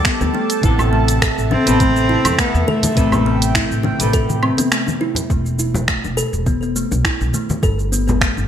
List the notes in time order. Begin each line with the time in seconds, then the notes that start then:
Already playing: G3 B3 A4 G5 A5 D6
0.05 B3, finger snap, kick, closed hi-hat, shaker
0.21 D2 B3, high bongo, high conga, shaker
0.34 A3, high bongo
0.50 closed hi-hat, shaker
0.61 A1 C3 B3 E4 E5, kick, closed hi-hat, shaker
0.65 A4
0.79 low conga, low woodblock, shaker
0.93 A3
1.08 closed hi-hat, shaker
1.22 A4, finger snap, kick, closed hi-hat, shaker
1.38 A1, shaker
1.51 C4, high bongo, high conga
1.65 A1 C3 B3 B4, closed hi-hat, high bongo, shaker
1.69 A4
1.80 A3, kick, closed hi-hat, high conga, shaker
1.96 shaker
2.09 E4
2.25 E2, closed hi-hat, low conga, low woodblock, shaker
2.38 A3 B3, finger snap, kick, closed hi-hat, shaker
2.54 E2, shaker
2.67 A3 A4, high bongo, high conga
2.83 closed hi-hat, high conga, low conga, shaker
2.95 A1 C3 C4 B4 G5, kick, closed hi-hat, shaker
2.99 A4
3.12 B3, low conga, low woodblock, shaker
3.26 A3
3.42 closed hi-hat, shaker
3.55 E4, finger snap, kick, closed hi-hat, shaker
3.71 A1, shaker
3.83 A3, high bongo, high conga
3.98 A1 C3 B4, closed hi-hat, high bongo, shaker
4.03 A4
4.13 A4, kick, closed hi-hat, shaker
4.29 high conga, shaker
4.43 C4, low woodblock
4.58 B3, closed hi-hat, high bongo, high conga, shaker
4.72 A3, finger snap, closed hi-hat, shaker
4.87 high bongo, high conga, shaker
5.01 E4, high bongo
5.15 closed hi-hat, low conga, shaker
5.30 E1 A3, kick, shaker
5.46 shaker
5.58 E4, high bongo, shaker
5.74 low conga, shaker
5.88 A3, finger snap, kick, shaker
6.04 E1, high bongo, shaker
6.17 A4, shaker
6.33 E1, shaker
6.46 B3, kick, high conga, shaker
6.63 B3, shaker
6.76 A3, shaker
6.91 B1, high bongo, shaker
7.05 E4, finger snap, kick, shaker
7.21 B1, high bongo, shaker
7.33 A3, high conga, shaker
7.50 high conga, low conga, shaker
7.63 G1 A4, kick, shaker
7.79 shaker
7.92 B3, high bongo, shaker
8.08 B3, low conga, shaker
8.21 A3, finger snap, kick, shaker
8.37 G1, high bongo, shaker